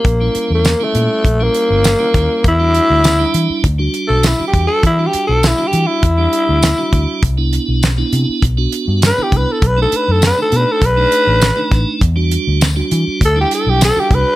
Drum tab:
HH |xxxxxxxx|xxxxxxxx|xxxxxxxx|xxxxxxxx|
TB |--x---x-|--x---x-|--x---x-|--x---x-|
SD |--o---oo|--o---o-|--o---o-|--o---o-|
BD |o---o--o|o---o--o|o---o--o|o---o--o|

HH |xxxxxxxx|xxxxxxxx|
TB |--x---x-|--x---x-|
SD |--o---oo|--o---o-|
BD |o---o--o|o---o--o|